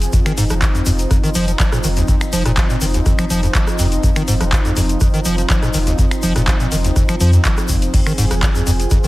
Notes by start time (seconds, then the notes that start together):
Already playing: F3 C4 G#4
0.02 closed hi-hat, shaker
0.13 F2 D#4, kick, closed hi-hat, shaker
0.26 D#3, finger snap, closed hi-hat, shaker
0.38 F1 G#2, open hi-hat, shaker
0.49 F1 F3, cross-stick, closed hi-hat, shaker
0.62 kick, clap, closed hi-hat, shaker
0.75 F2, closed hi-hat, shaker
0.86 F1 F2, open hi-hat, shaker
0.99 closed hi-hat, shaker
1.11 F2, kick, cross-stick, closed hi-hat, shaker
1.23 D#3, closed hi-hat, shaker
1.35 F1 F3, open hi-hat, shaker
1.48 F3, closed hi-hat, shaker
1.60 F3, kick, clap, closed hi-hat, shaker
1.72 A#2, cross-stick, closed hi-hat, shaker
1.84 F1 D#3, open hi-hat, shaker
1.97 D#2, closed hi-hat, shaker
2.08 F2, kick, closed hi-hat, shaker
2.21 finger snap, closed hi-hat, shaker
2.33 F1 F3, open hi-hat, shaker
2.45 F1 A#2, cross-stick, closed hi-hat, shaker
2.57 F3, kick, clap, closed hi-hat, shaker
2.70 A#2, closed hi-hat, shaker
2.81 F1 D#3, open hi-hat, shaker
2.94 D#2, closed hi-hat, shaker
3.06 F2, kick, cross-stick, closed hi-hat, shaker
3.19 F3, finger snap, closed hi-hat, shaker
3.30 F1 F3, open hi-hat, shaker
3.43 F2, closed hi-hat, shaker
3.55 F3, kick, clap, closed hi-hat, shaker
3.67 cross-stick, closed hi-hat, shaker
3.79 F1 F2, open hi-hat, shaker
3.92 closed hi-hat, shaker
4.03 F2, kick, closed hi-hat, shaker
4.16 D#3, finger snap, closed hi-hat, shaker
4.28 F1 G#2, open hi-hat, shaker
4.41 F1 F3, cross-stick, closed hi-hat, shaker
4.52 kick, clap, closed hi-hat, shaker
4.65 F2, closed hi-hat, shaker
4.77 F1 F2, open hi-hat, shaker
4.89 closed hi-hat, shaker
5.01 F2, kick, cross-stick, closed hi-hat, shaker
5.14 D#3, closed hi-hat, shaker
5.25 F1 F3, open hi-hat, shaker
5.38 F3, closed hi-hat, shaker
5.50 F3, kick, clap, closed hi-hat, shaker
5.63 A#2, cross-stick, closed hi-hat, shaker
5.74 F1 D#3, open hi-hat, shaker
5.87 D#2, closed hi-hat, shaker
5.99 F2, kick, closed hi-hat, shaker
6.11 finger snap, closed hi-hat, shaker
6.23 F1 F3, open hi-hat, shaker
6.36 F1 A#2, cross-stick, closed hi-hat, shaker
6.47 F3, kick, clap, closed hi-hat, shaker
6.60 A#2, closed hi-hat, shaker
6.72 F1 D#3, open hi-hat, shaker
6.84 D#2, closed hi-hat, shaker
6.96 F2, kick, cross-stick, closed hi-hat, shaker
7.09 F3, finger snap, closed hi-hat, shaker
7.20 F2 F3, open hi-hat, shaker
7.33 F2, closed hi-hat, shaker
7.45 F3, kick, clap, closed hi-hat, shaker
7.57 cross-stick, closed hi-hat, shaker
7.68 F1 F2, kick, open hi-hat, shaker
7.82 closed hi-hat, shaker
7.94 F2 G#4, kick, closed hi-hat, crash, shaker
8.06 D#3, finger snap, closed hi-hat, shaker
8.18 F1 G#2, open hi-hat, shaker
8.31 F1 F3, cross-stick, closed hi-hat, shaker
8.42 kick, clap, closed hi-hat, shaker
8.55 F2, closed hi-hat, shaker
8.67 F1 F2, open hi-hat, shaker
8.80 closed hi-hat, shaker
8.91 F2, kick, cross-stick, closed hi-hat, shaker
9.04 D#3, closed hi-hat, shaker